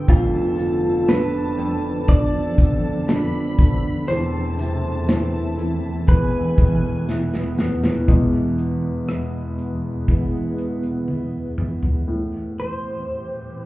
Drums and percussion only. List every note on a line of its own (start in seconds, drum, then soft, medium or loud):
0.08 kick loud
0.08 closed hi-hat loud
0.08 tambourine soft
0.59 closed hi-hat medium
0.59 tambourine medium
1.08 snare loud
1.08 closed hi-hat loud
1.08 tambourine medium
1.58 closed hi-hat medium
2.08 kick medium
2.08 closed hi-hat medium
2.08 tambourine soft
2.58 kick loud
2.58 closed hi-hat medium
2.58 tambourine soft
3.08 snare loud
3.08 closed hi-hat medium
3.08 tambourine medium
3.58 kick loud
3.58 closed hi-hat medium
3.58 tambourine medium
4.08 closed hi-hat loud
4.08 tambourine soft
4.59 closed hi-hat medium
4.59 tambourine medium
5.08 snare loud
5.08 closed hi-hat medium
5.08 tambourine medium
5.59 closed hi-hat medium
6.08 kick medium
6.08 closed hi-hat medium
6.08 tambourine soft
6.58 kick medium
6.58 closed hi-hat medium
6.58 tambourine medium
7.09 snare medium
7.09 tambourine loud
7.34 snare medium
7.58 snare medium
7.58 tambourine soft
7.84 snare medium
8.08 kick loud
8.08 closed hi-hat medium
8.58 closed hi-hat medium
9.08 cross-stick loud
9.08 closed hi-hat medium
9.58 closed hi-hat medium
10.08 kick medium
10.08 closed hi-hat medium
10.58 closed hi-hat medium
10.83 closed hi-hat soft
11.08 high tom soft
11.58 mid tom medium
11.83 floor tom medium